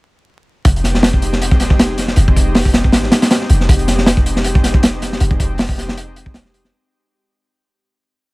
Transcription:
0.65 808-style bass F1, analog synth pad G#3 C4 D#4 G4, kick, closed hi-hat
0.76 closed hi-hat
0.84 snare, closed hi-hat
0.95 snare
1.03 snare, closed hi-hat
1.13 kick
1.22 analog synth pad G#3 C4 D#4 G4, closed hi-hat
1.33 snare
1.42 closed hi-hat
1.51 kick
1.60 snare, closed hi-hat
1.70 kick
1.79 snare, closed hi-hat
1.98 snare, closed hi-hat
2.08 snare
2.16 808-style bass F1, analog synth pad G#3 C4 D#4 G4, closed hi-hat
2.28 kick
2.36 kick, closed hi-hat
2.55 snare, open hi-hat
2.65 kick
2.74 analog synth pad G#3 C4 D#4 G4, snare, closed hi-hat
2.84 kick
2.92 808-style bass G#1, snare, closed hi-hat
3.03 snare
3.12 snare, closed hi-hat
3.22 snare, closed hi-hat
3.31 snare, closed hi-hat
3.41 snare
3.50 808-style bass F1, closed hi-hat
3.61 snare
3.69 808-style bass F1, analog synth pad G#3 C4 D#4 G4, kick, closed hi-hat
3.79 closed hi-hat
3.88 snare, closed hi-hat
3.98 snare
4.06 snare, closed hi-hat
4.17 kick
4.26 analog synth pad G#3 C4 D#4 G4, closed hi-hat
4.36 snare
4.44 closed hi-hat
4.55 kick
4.63 snare, closed hi-hat
4.74 kick
4.83 snare, closed hi-hat
5.02 snare, closed hi-hat
5.13 snare
5.20 808-style bass F1, analog synth pad G#3 C4 D#4 G4, closed hi-hat
5.31 kick
5.40 kick, closed hi-hat
5.58 snare, open hi-hat
5.69 kick
5.78 analog synth pad G#3 C4 D#4 G4, snare, closed hi-hat
5.89 snare
5.97 closed hi-hat
6.16 closed hi-hat
6.26 kick
6.34 snare, closed hi-hat
6.45 analog synth pad G#3 C4 D#4 G4, snare
6.54 closed hi-hat
6.65 snare

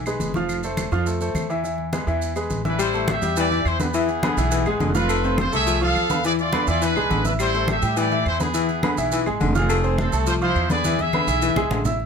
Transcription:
Already playing: upright bass B1
0.06 grand piano G#3 G#4 B4, high conga, claves, maracas
0.20 upright bass F1, high conga, maracas
0.34 grand piano F3 F4 F5, high conga, maracas
0.49 high conga, claves, maracas
0.63 grand piano A3 A4 C5, high conga, maracas
0.77 high conga, claves, maracas
0.92 upright bass F2, grand piano F3 F4 F5, high conga, maracas
1.06 grand piano A3 A4 C5, high conga, maracas
1.21 grand piano A3 A4 C5, high conga, maracas
1.34 upright bass E2, high conga, claves, maracas
1.50 grand piano E3 E4 E5, maracas
1.64 grand piano E3 E4 E5, high conga, maracas
1.78 high conga
1.93 grand piano G#3 G#4 B4, high conga, claves, maracas
2.07 upright bass E2, grand piano E3 E4 E5, high conga, maracas
2.22 high conga, maracas
2.36 grand piano G#3 G#4 B4, high conga, claves, maracas
2.50 upright bass A1, high conga, maracas
2.65 grand piano E3 E4 E5, trumpet section D4 B4, high conga, maracas
2.78 baritone saxophone G3, trumpet section E4 C5, claves, maracas
2.93 grand piano A3 A4 A5, high conga, maracas
3.08 trumpet section G4 E5, high conga, claves, maracas
3.22 upright bass E2, grand piano G3 G4 G5, high conga, maracas
3.36 baritone saxophone E3, trumpet section G4 D5, high conga, maracas
3.51 grand piano E3 E4 E5, high conga, maracas
3.65 upright bass E2, trumpet section E4 C5, high conga, claves, maracas
3.80 baritone saxophone D3, grand piano B3 B4 B5, trumpet section B3 G#4, high conga, maracas
3.94 baritone saxophone E3, grand piano E3 E4 E5, maracas
4.08 high conga, maracas
4.23 baritone saxophone D3, grand piano B3 B4 B5, high conga, claves, maracas
4.37 upright bass B1, grand piano E3 E4 E5, high conga, maracas
4.51 baritone saxophone E3, high conga, maracas
4.66 upright bass G#1, grand piano G#3 G#4 G#5, high conga, claves, maracas
4.80 upright bass F1, baritone saxophone D3, high conga, maracas
4.95 grand piano F4 F5 F6, trumpet section F4 B4, high conga, maracas
5.09 baritone saxophone A3, claves, maracas
5.24 grand piano C4 C5 C6, high conga, maracas
5.38 trumpet section F4 C5, high conga, claves, maracas
5.52 upright bass C2, grand piano A3 A4 A5, trumpet section G#4 E5, high conga, maracas
5.66 baritone saxophone F3, high conga, maracas
5.81 grand piano F3 F4 F5, trumpet section A4 F5, high conga, maracas
5.95 upright bass E2, high conga, claves, maracas
6.09 baritone saxophone D3, grand piano B3 B4 B5, high conga, maracas
6.24 grand piano E3 E4 E5, baritone saxophone E3, trumpet section G#4 D5, high conga, maracas
6.39 trumpet section F4 D5, high conga, maracas
6.53 baritone saxophone D3, grand piano B3 B4 B5, high conga, claves, maracas
6.67 upright bass E2, grand piano E3 E4 E5, trumpet section F4 D5, maracas
6.82 baritone saxophone E3, trumpet section D4 B4, high conga, maracas
6.96 upright bass B1, grand piano G#3 G#4 G#5, high conga, claves, maracas
7.10 upright bass A1, baritone saxophone D3, high conga, maracas
7.25 trumpet section D4 B4, grand piano E4 E5 E6, high conga, maracas
7.39 baritone saxophone G3, trumpet section E4 C5, claves, maracas
7.54 grand piano A3 A4 A5, high conga, maracas
7.68 trumpet section G4 E5, high conga, claves, maracas
7.82 upright bass A2, grand piano G3 G4 G5, high conga, maracas
7.97 baritone saxophone E3, trumpet section G4 D5, high conga, maracas
8.11 grand piano E3 E4 E5, high conga, maracas
8.26 upright bass E2, trumpet section E4 C5, high conga, claves, maracas
8.39 baritone saxophone D3, grand piano B3 B4 B5, trumpet section B3 G#4, high conga, maracas
8.54 baritone saxophone E3, grand piano E3 E4 E5, maracas
8.69 high conga, maracas
8.83 baritone saxophone D3, grand piano B3 B4 B5, high conga, claves, maracas
8.97 upright bass B1, grand piano E3 E4 E5, high conga, maracas
9.12 baritone saxophone E3, high conga, maracas
9.26 upright bass G#1, grand piano G#3 G#4 G#5, high conga, claves, maracas
9.40 upright bass F1, baritone saxophone D3, high conga, maracas
9.55 trumpet section C4 G#4, grand piano F4 F5 F6, high conga, maracas
9.69 baritone saxophone A3, claves, maracas
9.84 grand piano C4 C5 C6, high conga, maracas
9.98 trumpet section C4 A4, high conga, claves, maracas
10.12 upright bass C2, grand piano A3 A4 A5, high conga, maracas
10.27 baritone saxophone F3, trumpet section F4 C5, high conga, maracas
10.41 grand piano F3 F4 F5, trumpet section E4 C5, high conga, maracas
10.55 upright bass E2, high conga, claves, maracas
10.70 baritone saxophone D3, grand piano B3 B4 B5, trumpet section G#4 D5, high conga, maracas
10.84 grand piano E3 E4 E5, baritone saxophone E3, high conga, maracas
10.99 trumpet section G#4 E5, high conga, maracas
11.13 baritone saxophone D3, grand piano B3 B4 B5, high conga, claves, maracas
11.27 upright bass B1, grand piano E3 E4 E5, maracas
11.42 baritone saxophone E3, maracas
11.56 upright bass B1, grand piano G#3 G#4 G#5, low conga, claves, maracas
11.70 upright bass A1, baritone saxophone D3, low conga, maracas
11.85 grand piano E4 E5 E6, low conga, maracas
12.00 high conga

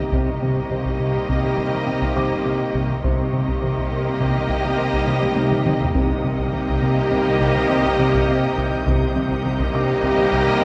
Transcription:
0.12 double bass section C2, analog synth bass C3, cello section C3, trombone section C3 G3, viola section A#3, french horn section A#3 D#4, violin section G4 D#5 C6 C#6, ambient pad G4 D#5 A#5, taiko
0.42 analog synth bass C3, taiko mid
0.56 taiko
0.71 analog synth bass C3, taiko mid
0.85 taiko
1.00 analog synth bass C3
1.29 analog synth bass C3, taiko
1.44 taiko mid
1.58 analog synth bass C3, taiko
1.73 taiko mid
1.87 analog synth bass C4, taiko mid
2.02 taiko
2.16 analog synth bass C3, felt piano D6, taiko mid
2.31 taiko
2.45 analog synth bass C3
2.74 analog synth bass C3, taiko
2.90 taiko mid
3.03 double bass section C2, analog synth bass C3, cello section C3, trombone section C3 G3, viola section A#3, french horn section A#3 D#4, violin section G4 D#5, ambient pad G4 D#5 A#5, taiko
3.33 analog synth bass C3, taiko mid
3.48 taiko
3.62 analog synth bass C3, taiko mid
3.78 taiko
3.83 violin section C6
3.91 analog synth bass C3, felt piano A#4
4.20 analog synth bass C3, taiko
4.35 taiko mid
4.50 analog synth bass C3, taiko
4.64 taiko mid
4.78 analog synth bass C4, taiko mid
4.93 taiko
5.07 analog synth bass C3, felt piano D#4 D#5, taiko mid
5.22 taiko high
5.35 analog synth bass C3, taiko high
5.51 taiko mid
5.66 analog synth bass C3, taiko mid
5.81 taiko low
5.94 double bass section C2, trombone section C3 G3, analog synth bass C3, cello section C3, viola section A#3, french horn section A#3 D#4, violin section G4 D#5 D#6, ambient pad G4 D#5 A#5, taiko
6.24 analog synth bass C3, taiko mid
6.39 taiko
6.53 analog synth bass C3, violin section G6, taiko mid
6.68 taiko
6.83 analog synth bass C3
7.11 analog synth bass C3, taiko
7.27 taiko mid
7.41 analog synth bass C3, taiko
7.56 taiko mid
7.70 analog synth bass C4, taiko mid
7.85 taiko
7.99 analog synth bass C3, taiko mid
8.14 taiko
8.29 analog synth bass C3
8.58 analog synth bass C3, taiko
8.72 taiko mid
8.86 double bass section C2, trombone section C3 G3, cello section C3, analog synth bass C3, french horn section D#3 A#3, viola section A#3, violin section G4 D#5, ambient pad G4 C5 A#5, taiko
9.16 analog synth bass C3, taiko mid
9.31 taiko
9.45 analog synth bass C3, taiko mid
9.60 taiko
9.75 analog synth bass C3, felt piano D4 D6
10.03 analog synth bass C3, taiko
10.18 taiko mid
10.22 violin section F#6
10.32 analog synth bass C3, taiko
10.47 taiko mid

